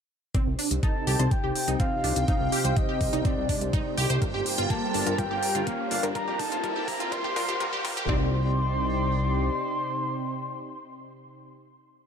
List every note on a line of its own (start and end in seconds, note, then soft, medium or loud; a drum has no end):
0.35 1.17 C3 medium
0.35 4.18 C3 medium
0.35 1.17 C4 medium
0.35 0.46 C4 medium
0.35 4.18 C4 medium
0.35 1.17 D#4 medium
0.35 4.18 D#4 medium
0.35 4.18 G4 medium
0.35 6.11 C5 medium
0.35 1.17 D5 medium
0.35 8.10 G5 medium
0.35 kick loud
0.35 closed hi-hat medium
0.35 riser medium
0.47 0.55 C2 medium
0.59 0.70 D4 medium
0.59 open hi-hat loud
0.71 0.79 C2 medium
0.71 closed hi-hat medium
0.83 0.94 D#4 medium
0.83 1.33 A5 loud
0.83 kick loud
0.83 closed hi-hat medium
1.07 1.16 C2 medium
1.07 1.15 G4 medium
1.07 open hi-hat medium
1.19 1.28 C2 medium
1.19 2.25 C3 medium
1.19 2.25 C4 medium
1.19 2.25 D#4 medium
1.19 1.27 C5 medium
1.19 2.25 D5 medium
1.19 closed hi-hat medium
1.31 1.79 G5 loud
1.31 kick loud
1.31 closed hi-hat soft
1.44 1.52 C2 medium
1.44 1.54 G4 medium
1.56 open hi-hat loud
1.68 1.76 C2 medium
1.68 1.75 D#4 medium
1.68 closed hi-hat medium
1.80 1.91 C4 medium
1.80 2.25 F5 loud
1.80 kick loud
1.80 closed hi-hat medium
2.04 2.13 C2 medium
2.04 2.15 D4 medium
2.04 open hi-hat medium
2.16 2.25 C2 medium
2.16 closed hi-hat medium
2.28 3.10 C3 medium
2.28 3.10 C4 medium
2.28 3.10 D#4 medium
2.28 2.39 D#4 medium
2.28 3.10 D#5 medium
2.28 2.78 F5 loud
2.28 kick loud
2.28 closed hi-hat medium
2.40 2.49 C2 medium
2.52 2.60 G4 loud
2.52 open hi-hat loud
2.65 2.73 C2 medium
2.65 2.72 C5 medium
2.65 closed hi-hat medium
2.77 3.27 D#5 medium
2.77 kick loud
2.77 closed hi-hat soft
2.89 3.00 G4 medium
3.01 3.09 C2 medium
3.01 kick medium
3.01 open hi-hat medium
3.13 3.21 C2 medium
3.13 4.19 C3 medium
3.13 4.19 C4 medium
3.13 3.20 D#4 medium
3.13 4.19 D#4 medium
3.13 4.19 D5 medium
3.13 closed hi-hat medium
3.25 3.36 C4 medium
3.25 3.98 D5 medium
3.25 kick loud
3.25 closed hi-hat soft
3.37 3.46 C2 medium
3.49 3.60 D4 medium
3.49 kick medium
3.49 open hi-hat loud
3.61 3.70 C2 medium
3.61 closed hi-hat medium
3.73 3.84 D#4 medium
3.73 kick loud
3.73 closed hi-hat medium
3.97 4.06 C2 medium
3.97 4.05 G4 loud
3.97 open hi-hat medium
4.10 4.18 C2 medium
4.10 4.17 C5 medium
4.10 closed hi-hat medium
4.22 5.04 G2 medium
4.22 5.04 G3 medium
4.22 6.13 G3 medium
4.22 5.04 F4 medium
4.22 8.05 F4 medium
4.22 5.04 A#4 medium
4.22 6.13 A#4 medium
4.22 6.13 A5 medium
4.22 kick loud
4.22 closed hi-hat soft
4.34 4.42 G1 medium
4.34 4.45 G4 medium
4.46 open hi-hat loud
4.58 4.67 G1 medium
4.58 4.65 F4 medium
4.58 closed hi-hat medium
4.70 4.81 A#3 medium
4.70 5.20 A5 medium
4.70 kick loud
4.70 closed hi-hat medium
4.94 5.03 G1 medium
4.94 5.05 D4 medium
4.94 open hi-hat medium
5.07 5.15 G1 medium
5.07 5.17 G2 medium
5.07 5.17 G3 medium
5.07 5.17 F4 medium
5.07 5.17 A#4 medium
5.07 closed hi-hat medium
5.18 6.00 G2 medium
5.18 6.00 G3 medium
5.18 6.00 F4 medium
5.18 6.00 A#4 loud
5.18 5.69 G5 loud
5.18 kick loud
5.18 closed hi-hat medium
5.31 5.39 G1 medium
5.31 5.42 G4 medium
5.43 open hi-hat loud
5.55 5.63 G1 medium
5.55 5.62 F4 medium
5.55 closed hi-hat medium
5.67 5.78 A#3 medium
5.67 5.91 F5 medium
5.67 kick loud
5.67 closed hi-hat medium
5.91 6.00 G1 medium
5.91 6.02 D4 medium
5.91 6.02 F5 medium
5.91 open hi-hat loud
6.03 6.12 G1 medium
6.03 6.13 G2 medium
6.03 6.13 G3 medium
6.03 6.13 F4 medium
6.03 6.13 A#4 medium
6.03 closed hi-hat medium
6.15 6.62 G2 medium
6.15 6.62 G3 medium
6.15 8.07 A#3 medium
6.15 8.07 C4 medium
6.15 6.62 F4 medium
6.15 6.62 A#4 medium
6.15 6.41 A#5 loud
6.15 kick loud
6.15 closed hi-hat soft
6.27 6.36 F1 medium
6.27 6.38 G4 medium
6.39 6.63 A5 loud
6.39 kick loud
6.39 open hi-hat loud
6.52 6.60 F1 medium
6.52 6.59 F4 medium
6.52 closed hi-hat medium
6.64 7.10 G2 medium
6.64 7.10 G3 medium
6.64 7.10 F4 medium
6.64 7.10 A#4 medium
6.64 6.89 A5 loud
6.64 kick loud
6.64 closed hi-hat soft
6.76 6.87 G4 medium
6.88 6.96 F1 medium
6.88 7.13 A#5 loud
6.88 kick loud
6.88 open hi-hat loud
7.00 7.08 F1 medium
7.00 7.07 F4 medium
7.00 closed hi-hat medium
7.12 7.34 G2 medium
7.12 7.34 G3 medium
7.12 7.34 F4 medium
7.12 7.34 A#4 loud
7.12 7.85 C6 loud
7.12 kick loud
7.12 closed hi-hat medium
7.24 7.33 F1 medium
7.24 7.34 G4 medium
7.24 kick loud
7.36 7.59 G2 medium
7.36 7.59 G3 medium
7.36 7.59 F4 medium
7.36 7.59 A#4 loud
7.36 kick loud
7.36 open hi-hat loud
7.48 7.57 F1 medium
7.48 7.58 G4 medium
7.48 kick medium
7.48 closed hi-hat medium
7.60 7.83 G2 medium
7.60 7.83 G3 medium
7.60 7.83 F4 medium
7.60 7.83 A#4 loud
7.60 kick loud
7.60 closed hi-hat medium
7.73 7.83 G4 medium
7.73 kick medium
7.85 7.93 F1 medium
7.85 8.07 G2 medium
7.85 8.07 G3 medium
7.85 8.07 F4 medium
7.85 8.07 A#4 loud
7.85 kick loud
7.85 open hi-hat loud
7.97 8.05 F1 medium
7.97 8.07 G4 medium
7.97 kick medium
7.97 closed hi-hat medium
8.09 9.50 C2 loud
8.09 11.49 C3 medium
8.09 8.31 C4 medium
8.09 11.49 C4 medium
8.09 11.49 D#4 medium
8.09 11.49 G4 medium
8.09 11.49 D5 medium
8.09 11.49 C6 loud
8.09 kick loud